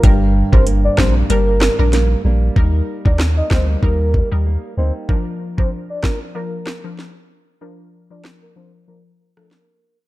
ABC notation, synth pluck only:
X:1
M:4/4
L:1/16
Q:"Swing 16ths" 1/4=95
K:Bb
V:1 name="Synth pluck"
[G,DB]3 [G,DB] z2 [G,DB] z [G,DB] z2 [G,DB] z4 | [G,EB]3 [G,EB]3 [G,EB]2 [G,EB] z2 [G,EB] z4 | [F,DB]3 [F,DB] z2 [F,DB] z [F,DB] z2 [F,DB] z4 | [F,DB]3 [F,DB]3 [F,DB]2 [F,DB] z2 [F,DB] z4 |]